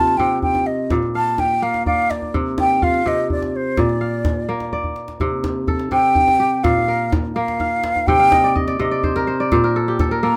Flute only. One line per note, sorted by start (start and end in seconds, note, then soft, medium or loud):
0.00 0.19 A5 medium
0.17 0.42 G5 medium
0.42 0.68 G5 medium
0.66 0.90 D#5 medium
1.16 1.41 A5 medium
1.39 1.64 G5 medium
1.63 1.86 F5 medium
1.86 2.12 F5 medium
2.10 2.34 D5 medium
2.60 2.85 G5 loud
2.83 3.09 F5 medium
3.08 3.31 D#5 medium
3.31 3.48 D5 medium
3.48 3.57 D5 medium
3.56 3.81 C5 medium
3.80 4.74 D5 medium
5.92 6.65 G5 loud
6.63 7.12 F5 medium
7.35 8.08 F5 medium
8.07 8.55 G5 loud
10.23 10.37 A#5 medium